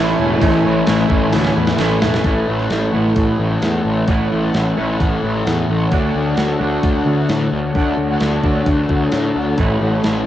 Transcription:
Already playing: picked electric bass A1, overdriven electric guitar A2 E3 A3 C#4, distorted electric guitar A2, analog synth pad E4 A4 C#5 G#5
0.00 overdriven electric guitar E4
0.19 picked electric bass E1, overdriven electric guitar A3 C#4 E4
0.41 picked electric bass A1, overdriven electric guitar A2 E3 A3 C#4 E4, kick, open hi-hat
0.64 picked electric bass A1, distorted electric guitar E3 A3
0.87 picked electric bass A1, distorted electric guitar A2, overdriven electric guitar E3 A3 C#4 E4, snare, open hi-hat
1.08 picked electric bass A1, overdriven electric guitar A2 E3 A3, kick
1.33 picked electric bass D2, distorted electric guitar A2, overdriven electric guitar E3 A3 C#4 E4, snare, open hi-hat
1.45 snare
1.56 picked electric bass E2, overdriven electric guitar A3 C#4 E4
1.67 snare
1.77 picked electric bass A1, overdriven electric guitar A2 E3 A3 C#4, distorted electric guitar A2, snare, open hi-hat
1.81 overdriven electric guitar E4
2.02 picked electric bass E1, overdriven electric guitar A3 C#4 E4, snare
2.14 snare
2.24 picked electric bass A1, overdriven electric guitar A2 E3 A3 C#4 E4, analog synth pad E4 A4 C#5 F#5, kick, open hi-hat
2.49 picked electric bass A1
2.59 snare
2.70 picked electric bass A1, snare, open hi-hat
2.93 picked electric bass A1, overdriven electric guitar A2 E3 A3 C#4 E4
3.16 picked electric bass A1, kick, open hi-hat
3.39 picked electric bass A1
3.62 picked electric bass E2, snare, open hi-hat
3.85 picked electric bass A1
4.08 picked electric bass A1, overdriven electric guitar A2 E3 A3 C#4 E4, kick, open hi-hat
4.32 picked electric bass A1
4.54 picked electric bass A1, snare, open hi-hat
4.77 picked electric bass A1, overdriven electric guitar A2 E3 A3 C#4 E4
5.00 picked electric bass A1, kick, open hi-hat
5.24 picked electric bass A1
5.47 picked electric bass E2, snare, open hi-hat
5.70 picked electric bass A1
5.91 picked electric bass D2, overdriven electric guitar D3 A3 D4 F#4, analog synth pad D4, kick, open hi-hat
6.15 picked electric bass D2
6.37 picked electric bass D2, snare, open hi-hat
6.59 picked electric bass D2, overdriven electric guitar D3 A3 D4 F#4
6.83 picked electric bass D2, kick, open hi-hat
7.06 picked electric bass D2
7.29 picked electric bass A2, snare, open hi-hat
7.52 picked electric bass D2
7.75 picked electric bass D2, overdriven electric guitar D3 A3 D4 F#4, kick, open hi-hat
7.98 picked electric bass D2
8.20 picked electric bass D2, snare, open hi-hat
8.43 picked electric bass D2, overdriven electric guitar D3 A3 D4 F#4, kick
8.66 picked electric bass D2, kick, open hi-hat
8.89 picked electric bass D2, kick
9.12 picked electric bass A2, snare, open hi-hat
9.36 picked electric bass D2
9.58 picked electric bass A1, overdriven electric guitar A2 E3 A3 C#4 E4, analog synth pad E4, kick, open hi-hat
9.81 picked electric bass A1
10.04 picked electric bass A1, snare, open hi-hat

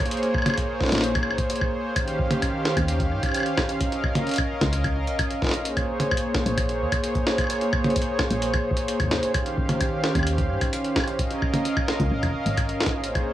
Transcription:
Already playing: analog synth pad A#3 G#4 C5 C#5
0.06 closed hi-hat
0.11 closed hi-hat
0.17 closed hi-hat
0.23 closed hi-hat
0.34 kick, high woodblock
0.38 high woodblock
0.42 closed hi-hat, mid tom, high woodblock
0.46 high woodblock
0.50 high woodblock
0.54 kick, closed hi-hat, high woodblock
0.81 kick, snare
0.83 snare
0.86 snare
0.89 snare
0.92 fm bass A#1, snare, closed hi-hat
0.95 snare
0.98 snare
1.01 snare, closed hi-hat
1.15 kick, closed hi-hat, high woodblock
1.23 high woodblock
1.31 high woodblock
1.38 fm bass G#1, kick, closed hi-hat
1.50 closed hi-hat
1.56 closed hi-hat
1.61 kick, high woodblock
1.96 analog synth pad D#3 C#4 G4 F5, kick, closed hi-hat, high woodblock
2.08 closed hi-hat
2.19 kick
2.31 closed hi-hat, mid tom
2.42 kick, closed hi-hat, high woodblock
2.65 snare
2.77 fm bass D#2, kick, closed hi-hat, high woodblock
2.88 closed hi-hat
3.00 kick, closed hi-hat
3.11 fm bass G2
3.23 kick, closed hi-hat, high woodblock
3.26 high woodblock
3.29 high woodblock
3.32 closed hi-hat, high woodblock
3.34 high woodblock
3.37 high woodblock
3.40 high woodblock
3.43 closed hi-hat, high woodblock
3.58 kick, snare, high woodblock
3.69 closed hi-hat
3.81 analog synth pad A#4 D#5, kick, closed hi-hat
3.92 closed hi-hat
4.04 kick, high woodblock
4.15 closed hi-hat, mid tom
4.27 closed hi-hat
4.29 closed hi-hat
4.31 closed hi-hat
4.34 closed hi-hat
4.36 kick, closed hi-hat
4.38 closed hi-hat, high woodblock
4.61 fm bass C#2, kick, snare, closed hi-hat
4.73 closed hi-hat
4.84 kick, closed hi-hat, high woodblock
5.07 fm bass A#1, closed hi-hat
5.19 fm bass G#1, kick, closed hi-hat, high woodblock
5.31 closed hi-hat
5.42 fm bass A#1, kick, snare
5.44 snare
5.47 snare
5.49 snare
5.51 snare, closed hi-hat
5.65 analog synth pad A#3 G#4 C5 C#5, closed hi-hat
5.77 kick, closed hi-hat, high woodblock
6.00 closed hi-hat, mid tom
6.11 kick, high woodblock
6.17 closed hi-hat
6.34 kick, snare
6.46 fm bass A#1, closed hi-hat
6.58 kick, closed hi-hat, high woodblock
6.69 closed hi-hat
6.81 fm bass D#2
6.92 kick, closed hi-hat, high woodblock
7.04 closed hi-hat
7.15 kick, closed hi-hat
7.27 snare
7.38 kick, closed hi-hat, high woodblock
7.41 high woodblock
7.44 high woodblock
7.47 closed hi-hat, high woodblock
7.50 high woodblock
7.53 high woodblock
7.56 high woodblock
7.58 closed hi-hat, high woodblock
7.73 kick, high woodblock
7.84 closed hi-hat, mid tom
7.90 closed hi-hat
7.96 kick, closed hi-hat
8.02 closed hi-hat
8.19 kick, snare, high woodblock
8.31 fm bass A#1, closed hi-hat
8.42 closed hi-hat
8.54 kick, closed hi-hat, high woodblock
8.71 kick
8.77 fm bass G#1, closed hi-hat
8.88 closed hi-hat
9.00 kick, closed hi-hat, high woodblock
9.04 kick
9.07 kick, snare
9.11 kick
9.15 kick
9.19 kick, closed hi-hat
9.34 analog synth pad D#3 C#4 G4 F5, kick, closed hi-hat, high woodblock
9.46 closed hi-hat
9.58 kick
9.69 closed hi-hat, mid tom
9.81 kick, closed hi-hat, high woodblock
10.04 snare
10.15 fm bass D#2, kick, closed hi-hat, high woodblock
10.19 high woodblock
10.23 closed hi-hat, high woodblock
10.38 kick, closed hi-hat
10.50 fm bass G2
10.61 kick, closed hi-hat, high woodblock
10.73 closed hi-hat
10.85 closed hi-hat
10.96 kick, snare, high woodblock
11.00 high woodblock
11.04 closed hi-hat, high woodblock
11.19 analog synth pad A#4 D#5 F5, kick, closed hi-hat
11.31 closed hi-hat
11.42 kick, high woodblock
11.54 closed hi-hat, mid tom
11.65 closed hi-hat
11.77 kick, high woodblock
11.88 snare
12.00 fm bass C#2, kick, closed hi-hat
12.11 fm bass A#1
12.23 kick, closed hi-hat, high woodblock
12.25 kick
12.28 kick
12.30 kick
12.32 kick
12.46 fm bass G#1, closed hi-hat
12.58 kick, closed hi-hat, high woodblock
12.69 closed hi-hat
12.81 snare
12.83 snare
12.86 kick, snare, closed hi-hat
12.89 snare
13.04 fm bass A#1, analog synth pad A#3 G#4 C5 C#5, closed hi-hat
13.15 kick, closed hi-hat, high woodblock

